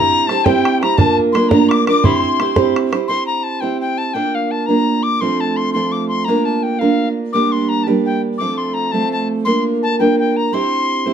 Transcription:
0.00 0.27 C4 medium
0.00 0.28 E4 medium
0.00 0.29 G4 medium
0.00 0.30 C5 medium
0.00 0.29 A#5 loud
0.00 0.30 A#5 medium
0.13 bodhran soft
0.27 0.45 C4 medium
0.27 0.45 E4 medium
0.27 0.45 G4 medium
0.27 0.44 C5 medium
0.27 0.46 A5 medium
0.27 0.47 A5 medium
0.27 bodhran medium
0.45 0.82 C4 medium
0.45 0.82 E4 medium
0.45 0.81 G4 medium
0.45 0.80 C5 medium
0.45 0.81 G5 medium
0.45 0.84 G5 medium
0.45 bodhran medium
0.65 bodhran medium
0.81 0.97 E4 soft
0.81 0.98 G4 soft
0.81 0.98 C5 soft
0.81 0.99 A#5 medium
0.81 1.00 A#5 medium
0.81 bodhran medium
0.97 1.33 A#3 medium
0.97 1.34 D4 medium
0.97 1.35 F4 medium
0.97 1.35 A#4 medium
0.97 1.18 A5 medium
0.97 bodhran medium
1.18 bodhran soft
1.33 1.51 A#3 medium
1.33 1.51 D4 medium
1.33 1.51 F4 medium
1.33 1.50 A#4 medium
1.33 1.51 C6 medium
1.33 bodhran medium
1.49 1.88 A#3 medium
1.49 1.88 D4 medium
1.49 1.87 F4 medium
1.49 1.86 A#4 medium
1.49 1.70 A#5 medium
1.49 1.73 A#5 medium
1.49 bodhran medium
1.69 1.86 D6 medium
1.69 1.87 D6 medium
1.69 bodhran medium
1.86 2.04 D4 soft
1.86 2.04 F4 soft
1.86 2.04 A#4 soft
1.86 2.02 D6 medium
1.86 2.07 D6 medium
1.86 bodhran medium
2.03 2.38 C4 medium
2.03 2.39 E4 medium
2.03 2.40 G4 medium
2.03 2.41 C5 medium
2.03 2.17 B5 medium
2.03 2.72 C6 medium
2.03 bodhran medium
2.17 2.77 C6 medium
2.24 bodhran soft
2.40 2.56 C4 medium
2.40 2.56 E4 medium
2.40 2.55 G4 soft
2.40 2.55 C5 medium
2.40 bodhran medium
2.56 2.93 C4 medium
2.56 2.93 E4 medium
2.56 2.92 G4 medium
2.56 2.91 C5 medium
2.56 bodhran medium
2.76 bodhran medium
2.92 3.08 E4 soft
2.92 3.09 G4 soft
2.92 3.09 C5 medium
2.92 bodhran medium
3.08 3.62 C4 soft
3.08 3.62 E4 medium
3.08 3.61 G4 medium
3.08 3.60 C5 medium
3.08 3.26 C6 medium
3.27 3.45 A#5 medium
3.43 3.62 A5 medium
3.61 4.14 C4 soft
3.61 4.15 E4 soft
3.61 4.15 G4 soft
3.61 4.15 C5 soft
3.61 3.80 G5 medium
3.81 3.99 G5 medium
3.98 4.15 A5 medium
4.14 4.68 A#3 medium
4.14 4.68 D4 medium
4.14 4.68 F4 medium
4.14 4.67 A#4 medium
4.14 4.36 G5 medium
4.35 4.53 F5 medium
4.51 4.68 A5 medium
4.66 5.21 A#3 soft
4.66 5.22 D4 soft
4.66 5.22 F4 soft
4.66 5.21 A#4 soft
4.66 5.05 A#5 medium
5.03 5.22 D6 medium
5.21 5.74 F3 medium
5.21 5.74 A3 soft
5.21 5.74 C4 medium
5.21 5.73 F4 medium
5.21 5.42 C6 medium
5.40 5.58 A5 medium
5.57 5.73 C6 medium
5.73 6.27 F3 medium
5.73 6.28 A3 soft
5.73 6.28 C4 soft
5.73 6.28 F4 medium
5.73 5.94 C6 medium
5.92 6.08 D6 medium
6.08 6.26 C6 medium
6.25 6.81 A#3 medium
6.25 6.81 D4 medium
6.25 6.47 A#5 medium
6.29 6.80 F4 medium
6.29 6.80 A#4 medium
6.45 6.64 A5 medium
6.63 6.81 G5 medium
6.79 7.33 A#3 soft
6.79 7.34 D4 soft
6.79 7.34 F4 medium
6.79 7.34 A#4 medium
6.79 7.09 F5 medium
7.33 7.87 G3 medium
7.33 7.87 A#3 medium
7.33 7.86 D4 medium
7.33 7.85 G4 medium
7.33 7.54 D6 medium
7.52 7.70 C6 medium
7.69 7.85 A#5 medium
7.83 8.40 D4 soft
7.83 8.40 G4 medium
7.83 7.86 A5 medium
7.88 8.39 G3 soft
7.88 8.40 A#3 soft
8.06 8.22 G5 medium
8.38 8.93 F3 soft
8.38 8.92 A3 medium
8.38 8.93 C4 medium
8.38 8.92 F4 medium
8.38 8.59 D6 medium
8.58 8.75 C6 medium
8.74 8.93 A#5 medium
8.92 9.46 F3 soft
8.92 9.46 A3 soft
8.92 9.46 C4 soft
8.92 9.46 F4 medium
8.92 9.11 A5 medium
9.12 9.28 A5 medium
9.45 9.99 A#3 medium
9.45 10.00 D4 medium
9.45 9.99 F4 medium
9.45 9.98 A#4 medium
9.45 9.64 C6 medium
9.83 9.98 A5 medium
10.00 10.52 A#3 medium
10.00 10.53 D4 soft
10.00 10.53 F4 soft
10.00 10.53 A#4 medium
10.00 10.18 G5 medium
10.19 10.38 G5 medium
10.37 10.55 A#5 medium
10.53 11.06 C4 medium
10.53 11.05 E4 medium
10.53 11.05 G4 medium
10.53 11.04 C5 medium
10.53 11.13 C6 medium
11.06 11.13 C4 soft
11.06 11.13 E4 medium
11.06 11.13 G4 medium
11.06 11.13 C5 medium

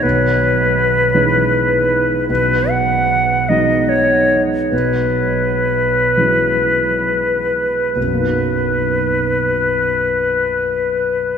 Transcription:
0.03 1.10 B1 soft
0.03 2.28 B4 soft
1.14 2.25 E3 soft
1.14 2.26 G#3 soft
1.14 2.26 C#4 soft
1.14 2.26 D#4 soft
2.29 3.46 B1 soft
2.29 2.72 B4 soft
2.70 3.50 F#5 medium
3.49 4.68 F#3 soft
3.49 4.68 G#3 soft
3.49 4.69 B3 soft
3.49 4.69 D#4 soft
3.49 3.90 D#5 soft
3.89 4.42 C#5 soft
4.71 6.13 B1 soft
4.71 7.91 B4 soft
6.17 7.92 F#3 soft
6.17 7.92 G#3 soft
6.17 7.92 C#4 soft
6.17 7.92 E4 soft
7.93 11.38 B1 soft
7.93 11.38 B4 soft
8.01 11.38 F#2 soft
8.07 11.38 F#3 soft
8.13 11.38 A#3 soft
8.19 11.38 D#4 soft
8.25 11.38 F#4 soft

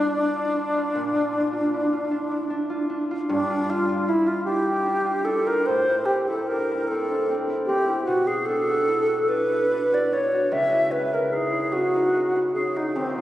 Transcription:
0.00 0.99 G2 medium
0.00 0.15 D4 medium
0.00 3.03 D4 loud
0.00 0.30 E4 soft
0.00 0.34 F4 medium
0.16 0.55 D4 medium
0.36 0.76 F4 medium
0.57 1.34 D4 soft
0.77 1.14 F4 medium
0.95 3.33 A#2 medium
1.16 1.51 F4 medium
1.35 2.10 D4 soft
1.53 1.91 F4 medium
1.74 2.07 E4 soft
1.93 2.69 F4 soft
2.11 2.49 D4 medium
2.31 2.65 E4 soft
2.50 2.88 D4 soft
2.70 3.10 F4 medium
2.90 3.68 D4 medium
3.11 3.49 F4 medium
3.29 5.69 G2 medium
3.29 3.71 D4 medium
3.50 3.88 F4 medium
3.69 4.45 D4 medium
3.69 4.10 F4 medium
3.89 4.25 F4 medium
4.08 4.41 E4 soft
4.08 4.29 E4 medium
4.26 5.04 F4 medium
4.26 4.44 F4 medium
4.45 4.84 D4 soft
4.45 5.26 G4 medium
4.67 5.00 E4 soft
4.85 5.25 D4 medium
5.05 5.45 F4 medium
5.25 5.69 D4 soft
5.25 5.48 A4 medium
5.46 5.69 F4 medium
5.46 5.68 A#4 medium
5.66 8.09 A2 medium
5.66 6.07 C5 medium
5.89 6.28 E4 medium
6.05 6.90 C4 soft
6.05 6.29 G4 medium
6.28 6.70 E4 medium
6.28 6.49 A4 medium
6.47 6.83 D4 soft
6.47 6.89 A#4 medium
6.71 7.48 E4 medium
6.87 7.29 C4 medium
6.87 7.35 A4 medium
7.11 7.43 D4 soft
7.31 7.68 C4 soft
7.50 7.86 E4 soft
7.65 8.10 C4 soft
7.65 8.03 G4 medium
7.88 8.09 E4 medium
8.04 10.56 B2 medium
8.04 8.29 F#4 medium
8.27 8.69 F#4 medium
8.27 8.47 G#4 medium
8.46 9.29 D4 soft
8.46 9.30 A4 medium
8.70 9.06 F#4 soft
8.88 9.23 E4 soft
9.08 9.91 F#4 medium
9.28 9.70 D4 soft
9.28 9.96 B4 medium
9.51 9.86 E4 soft
9.72 10.11 D4 soft
9.92 10.32 F#4 soft
9.92 10.15 D5 medium
10.12 10.55 D4 soft
10.12 10.54 C#5 medium
10.34 10.56 F#4 soft
10.51 12.99 C#2 medium
10.51 10.93 E5 medium
10.74 11.11 E4 medium
10.91 11.72 C#4 soft
10.91 11.15 B4 medium
11.13 11.50 E4 soft
11.13 11.35 A#4 medium
11.33 11.66 D#4 soft
11.33 11.74 G#4 medium
11.52 12.35 E4 soft
11.72 12.13 C#4 soft
11.72 12.54 F#4 medium
11.96 12.28 D#4 soft
12.14 12.54 C#4 soft
12.36 12.75 E4 soft
12.54 12.99 C#4 soft
12.54 12.78 G#4 medium
12.76 12.98 D#4 medium
12.76 13.00 E4 soft
12.96 13.21 D#2 medium
12.96 13.17 C4 medium
13.18 13.21 F4 soft

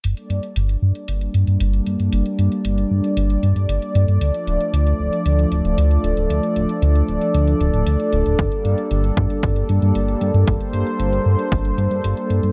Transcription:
0.04 0.14 G1 medium
0.04 4.18 G3 medium
0.04 4.18 A#3 medium
0.04 4.17 D4 medium
0.04 12.52 A4 medium
0.04 10.44 D5 medium
0.04 closed hi-hat medium
0.17 closed hi-hat soft
0.30 0.40 G2 medium
0.30 closed hi-hat medium
0.43 closed hi-hat soft
0.56 0.76 G1 medium
0.56 closed hi-hat medium
0.69 closed hi-hat soft
0.82 0.92 G2 medium
0.95 closed hi-hat soft
1.08 1.29 G1 medium
1.08 closed hi-hat medium
1.21 closed hi-hat soft
1.34 1.45 G2 medium
1.34 closed hi-hat medium
1.47 1.58 G2 medium
1.47 closed hi-hat soft
1.60 1.81 G1 loud
1.60 closed hi-hat medium
1.73 closed hi-hat soft
1.86 1.97 G2 loud
1.86 closed hi-hat medium
2.00 2.10 G2 medium
2.00 closed hi-hat soft
2.13 2.23 G1 medium
2.13 closed hi-hat medium
2.26 closed hi-hat soft
2.39 2.49 G2 medium
2.39 closed hi-hat medium
2.52 closed hi-hat soft
2.65 2.85 G1 loud
2.65 closed hi-hat medium
2.78 closed hi-hat soft
2.91 3.01 G2 medium
3.04 closed hi-hat soft
3.17 3.37 G1 medium
3.17 closed hi-hat medium
3.30 closed hi-hat soft
3.43 3.53 G2 loud
3.43 closed hi-hat medium
3.56 3.66 G2 medium
3.56 closed hi-hat soft
3.69 3.79 G1 medium
3.69 closed hi-hat medium
3.82 closed hi-hat soft
3.95 4.05 G2 medium
3.95 closed hi-hat medium
4.08 4.18 G2 medium
4.08 closed hi-hat soft
4.21 4.31 D2 medium
4.21 8.35 F3 medium
4.21 8.35 A3 medium
4.21 12.52 D4 medium
4.21 closed hi-hat medium
4.34 closed hi-hat soft
4.47 4.58 D1 medium
4.47 closed hi-hat medium
4.61 closed hi-hat soft
4.73 4.94 D2 medium
4.73 closed hi-hat medium
4.87 closed hi-hat soft
5.00 5.10 D1 medium
5.13 closed hi-hat soft
5.26 5.46 D2 medium
5.26 closed hi-hat medium
5.39 closed hi-hat soft
5.52 5.62 D1 loud
5.52 closed hi-hat medium
5.65 5.75 D1 medium
5.65 closed hi-hat soft
5.78 5.98 D2 medium
5.78 closed hi-hat medium
5.91 closed hi-hat soft
6.04 6.14 D1 loud
6.04 closed hi-hat medium
6.17 6.27 D1 loud
6.17 closed hi-hat soft
6.30 6.40 D2 medium
6.30 closed hi-hat medium
6.43 closed hi-hat soft
6.56 6.66 D1 medium
6.56 closed hi-hat medium
6.69 closed hi-hat soft
6.82 7.03 D2 loud
6.82 closed hi-hat medium
6.95 closed hi-hat soft
7.08 7.19 D1 medium
7.08 closed hi-hat soft
7.21 closed hi-hat soft
7.34 7.55 D2 medium
7.34 closed hi-hat medium
7.47 closed hi-hat soft
7.61 7.71 D1 loud
7.61 closed hi-hat medium
7.74 7.84 D1 medium
7.74 closed hi-hat soft
7.87 7.97 D2 medium
7.87 closed hi-hat medium
8.00 closed hi-hat soft
8.13 8.23 D1 medium
8.13 closed hi-hat medium
8.26 8.36 D1 medium
8.26 closed hi-hat soft
8.39 8.49 G1 medium
8.39 12.52 G3 medium
8.39 12.52 A#3 medium
8.39 kick loud
8.39 closed hi-hat medium
8.52 closed hi-hat soft
8.65 8.75 G2 medium
8.65 closed hi-hat medium
8.78 closed hi-hat soft
8.91 9.11 G1 medium
8.91 closed hi-hat medium
9.04 closed hi-hat soft
9.17 9.27 G2 medium
9.17 kick loud
9.30 closed hi-hat soft
9.43 9.63 G1 medium
9.43 kick loud
9.43 closed hi-hat medium
9.56 closed hi-hat soft
9.69 9.79 G2 loud
9.69 closed hi-hat medium
9.82 9.92 G2 medium
9.82 closed hi-hat soft
9.95 10.16 G1 medium
9.95 closed hi-hat medium
10.08 closed hi-hat soft
10.21 10.32 G2 loud
10.21 closed hi-hat medium
10.34 10.45 G2 loud
10.34 closed hi-hat soft
10.47 10.58 G1 medium
10.47 12.52 C5 medium
10.47 kick loud
10.47 closed hi-hat medium
10.60 closed hi-hat soft
10.73 10.84 G2 medium
10.73 closed hi-hat medium
10.87 closed hi-hat soft
11.00 11.20 G1 loud
11.00 closed hi-hat medium
11.13 closed hi-hat soft
11.26 11.36 G2 medium
11.39 closed hi-hat soft
11.52 11.72 G1 medium
11.52 kick loud
11.52 closed hi-hat medium
11.65 closed hi-hat soft
11.78 11.88 G2 loud
11.78 closed hi-hat medium
11.91 12.01 G2 medium
11.91 closed hi-hat soft
12.04 12.14 G1 medium
12.04 closed hi-hat medium
12.17 closed hi-hat soft
12.30 12.40 G2 medium
12.30 closed hi-hat medium
12.43 12.52 G2 medium
12.43 closed hi-hat soft

